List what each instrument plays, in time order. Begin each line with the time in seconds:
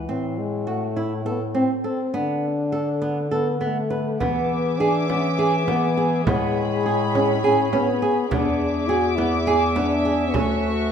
Already playing: french horn E3
0.09 bass clarinet A2, nylon-string guitar C4
0.39 french horn G#3
0.67 french horn A3, nylon-string guitar F#4
0.96 nylon-string guitar E4
1.25 french horn B3, nylon-string guitar A4
1.55 nylon-string guitar C4, french horn C4
1.84 french horn C4, nylon-string guitar A4
2.13 bass clarinet D3, nylon-string guitar B3, french horn D4
2.72 nylon-string guitar A4
3.02 nylon-string guitar B3
3.31 french horn B3, nylon-string guitar A4
3.61 french horn A3, nylon-string guitar B3
3.90 nylon-string guitar B4
4.20 bass clarinet E3, nylon-string guitar B3, french horn B3, string section G#4 E5 D6, frame drum
4.79 french horn D4, nylon-string guitar G#4
5.07 nylon-string guitar B3, french horn C#4, frame drum
5.39 nylon-string guitar G#4
5.66 french horn B3, nylon-string guitar B3, frame drum
5.97 nylon-string guitar G#4
6.25 bass clarinet A2, french horn G#3, nylon-string guitar B3, string section C#5 B5, frame drum
6.86 nylon-string guitar G#4
7.15 nylon-string guitar C#4, frame drum
7.43 french horn C#4, nylon-string guitar G#4
7.72 french horn B3, nylon-string guitar C#4, frame drum
8.02 nylon-string guitar G#4
8.29 bass clarinet E2, nylon-string guitar B3, french horn D4, string section E5 D6, frame drum
8.88 french horn F#4, nylon-string guitar G#4
9.16 nylon-string guitar B3, french horn E4, frame drum
9.47 nylon-string guitar G#4
9.76 nylon-string guitar B3, french horn D4, frame drum
10.05 nylon-string guitar G#4
10.33 bass clarinet D2, french horn A3, nylon-string guitar C#4, string section F#4 C#6, frame drum